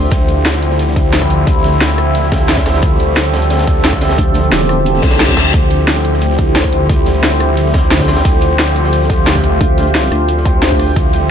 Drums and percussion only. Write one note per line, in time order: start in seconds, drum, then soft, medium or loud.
0.11 kick loud
0.11 closed hi-hat loud
0.11 closed hi-hat medium
0.28 closed hi-hat medium
0.45 snare loud
0.45 closed hi-hat medium
0.62 closed hi-hat medium
0.71 snare medium
0.79 closed hi-hat medium
0.88 snare soft
0.96 kick loud
0.96 closed hi-hat medium
1.13 snare loud
1.13 closed hi-hat medium
1.22 kick medium
1.22 cross-stick soft
1.30 closed hi-hat medium
1.47 kick loud
1.47 closed hi-hat loud
1.63 snare medium
1.63 closed hi-hat medium
1.73 closed hi-hat soft
1.80 snare loud
1.80 closed hi-hat medium
1.89 snare soft
1.98 cross-stick medium
1.98 closed hi-hat medium
2.15 closed hi-hat medium
2.23 snare soft
2.32 kick loud
2.32 snare loud
2.32 closed hi-hat medium
2.49 snare loud
2.49 closed hi-hat medium
2.49 open hi-hat medium
2.57 kick medium
2.57 snare loud
2.57 closed hi-hat medium
2.66 cross-stick soft
2.66 snare loud
2.66 closed hi-hat medium
2.74 snare loud
2.74 closed hi-hat medium
2.82 kick loud
2.82 closed hi-hat loud
3.00 closed hi-hat medium
3.16 snare loud
3.16 closed hi-hat medium
3.16 closed hi-hat loud
3.33 snare loud
3.33 closed hi-hat medium
3.42 closed hi-hat medium
3.50 snare loud
3.50 closed hi-hat medium
3.50 closed hi-hat loud
3.58 snare loud
3.58 closed hi-hat medium
3.67 kick loud
3.67 closed hi-hat medium
3.84 snare loud
3.84 closed hi-hat loud
3.84 closed hi-hat medium
3.93 kick medium
3.93 cross-stick soft
4.01 snare loud
4.01 closed hi-hat medium
4.09 snare loud
4.09 closed hi-hat medium
4.18 kick loud
4.18 closed hi-hat medium
4.18 closed hi-hat loud
4.34 snare medium
4.34 closed hi-hat medium
4.44 closed hi-hat soft
4.52 snare loud
4.52 closed hi-hat loud
4.61 snare soft
4.69 cross-stick medium
4.69 closed hi-hat medium
4.86 closed hi-hat medium
4.86 closed hi-hat loud
4.94 snare soft
5.02 kick loud
5.02 snare loud
5.02 closed hi-hat medium
5.11 snare loud
5.11 closed hi-hat medium
5.20 snare loud
5.20 closed hi-hat medium
5.20 closed hi-hat loud
5.28 kick medium
5.28 snare loud
5.28 closed hi-hat medium
5.37 cross-stick soft
5.37 snare loud
5.37 closed hi-hat medium
5.54 kick loud
5.54 closed hi-hat loud
5.70 closed hi-hat medium
5.87 snare loud
5.87 closed hi-hat medium
5.87 closed hi-hat loud
6.04 closed hi-hat medium
6.13 snare soft
6.21 closed hi-hat medium
6.21 closed hi-hat loud
6.30 snare soft
6.39 kick loud
6.39 closed hi-hat medium
6.55 snare loud
6.55 closed hi-hat medium
6.64 kick medium
6.64 cross-stick soft
6.72 closed hi-hat medium
6.89 kick loud
6.89 closed hi-hat loud
7.06 snare medium
7.06 closed hi-hat medium
7.15 closed hi-hat soft
7.23 snare loud
7.23 closed hi-hat loud
7.32 snare soft
7.40 cross-stick medium
7.40 closed hi-hat medium
7.57 closed hi-hat loud
7.57 closed hi-hat medium
7.66 snare soft
7.74 kick loud
7.74 snare loud
7.74 closed hi-hat medium
7.91 snare loud
7.91 closed hi-hat medium
7.91 open hi-hat medium
7.99 kick medium
7.99 snare medium
7.99 closed hi-hat medium
8.08 cross-stick soft
8.08 snare loud
8.08 closed hi-hat medium
8.16 snare loud
8.16 closed hi-hat medium
8.25 kick loud
8.25 closed hi-hat medium
8.25 closed hi-hat loud
8.41 closed hi-hat medium
8.59 snare loud
8.59 closed hi-hat medium
8.76 closed hi-hat medium
8.84 snare medium
8.93 closed hi-hat medium
9.02 snare soft
9.10 kick loud
9.10 closed hi-hat medium
9.27 snare loud
9.27 closed hi-hat medium
9.27 closed hi-hat loud
9.35 kick medium
9.35 cross-stick soft
9.43 closed hi-hat medium
9.61 kick loud
9.61 closed hi-hat medium
9.78 snare medium
9.78 closed hi-hat medium
9.87 closed hi-hat soft
9.94 snare loud
9.94 closed hi-hat medium
10.03 snare soft
10.12 cross-stick medium
10.12 closed hi-hat medium
10.28 closed hi-hat loud
10.28 closed hi-hat medium
10.37 snare soft
10.45 kick loud
10.45 closed hi-hat medium
10.62 snare loud
10.62 closed hi-hat medium
10.71 kick medium
10.79 cross-stick soft
10.79 closed hi-hat medium
10.79 open hi-hat medium
10.96 kick loud
10.96 closed hi-hat medium
11.13 closed hi-hat medium